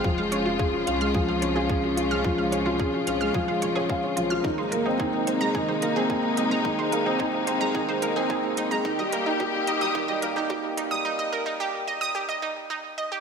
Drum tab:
HH |-x-x-x-x|-x-x-x-x|-x-x-x-x|-x-x-x-x|
BD |o-o-o-o-|o-o-o-o-|o-o-o-o-|o-o-o-o-|

HH |-x-x-x-x|--------|
BD |o-o-o-o-|--------|